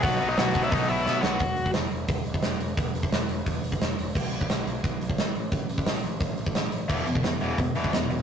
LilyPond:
<<
  \new Staff \with { instrumentName = "Lead electric guitar" } { \time 4/4 \key b \mixolydian \tempo 4 = 175 <fis' fis''>8. <dis' dis''>16 <fis' fis''>8. <e' e''>16 <dis' dis''>8 <e' e''>4 <fis' fis''>8~ | <fis' fis''>4 r2. | r1 | r1 |
r1 | r1 | }
  \new Staff \with { instrumentName = "Distorted electric guitar" } { \clef bass \time 4/4 \key b \mixolydian <b, fis b>8 <b, fis b>8 <b, fis b>8 <b, fis b>8 <b, fis b>8 <b, fis b>8 <b, fis b>8 <b, fis b>8 | r1 | r1 | r1 |
r1 | <e, b, e>8 <e, b,>8 <e, b,>8 <e, b, e>8 <e, b,>8 <e, b, e>8 <e, b,>8 <e, b,>8 | }
  \new Staff \with { instrumentName = "Distorted electric guitar" } { \clef bass \time 4/4 \key b \mixolydian <b, fis b>8 <b, fis b>8 <b, fis b>8 <b, fis b>8 <b, fis b>8 <b, fis b>8 <b, fis b>8 <b, fis b>8 | r1 | r1 | r1 |
r1 | <e, b, e>8 <e, b,>8 <e, b,>8 <e, b, e>8 <e, b,>8 <e, b, e>8 <e, b,>8 <e, b,>8 | }
  \new Staff \with { instrumentName = "Picked electric bass" } { \clef bass \time 4/4 \key b \mixolydian b,,8 b,,8 b,,8 b,,8 b,,8 b,,8 b,8 b,,8 | e,,8 e,,8 e,,8 e,,8 e,,8 e,,8 e,,8 e,,8 | e,,8 e,,8 e,,8 e,,8 e,,8 e,,8 e,,8 e,,8 | b,,8 b,,8 b,,8 b,,8 b,,8 b,,8 gis,,8 a,,8 |
a,,8 a,,8 a,,8 a,,8 a,,8 a,,8 a,,8 a,,8 | e,,8 e,,8 e,,8 e,,8 e,,8 e,,8 e,,8 e,,8 | }
  \new DrumStaff \with { instrumentName = "Drums" } \drummode { \time 4/4 <hho bd>4 <hho sn>8 bd8 <hho bd>4 sn8 sn8 | <hho bd>8 hho16 bd16 <hho sn>8 hho8 <hho bd>8 hho16 bd16 <hho sn>8 hho8 | <hho bd>8 hho16 bd16 <hho sn>8 hho8 <hho bd>8 hho16 bd16 <hho sn>8 hho8 | <cymc bd>8 hho16 bd16 <hho sn>8 hho8 <hho bd>8 hho16 bd16 <hho sn>8 hho8 |
<hho bd>8 hho16 bd16 <hho sn>8 hho8 <hho bd>8 hho16 bd16 <hho sn>8 hho8 | <cymc bd>8 hho16 bd16 <hho sn>8 hho8 <hho bd>8 hho16 bd16 <hho sn>8 hho8 | }
>>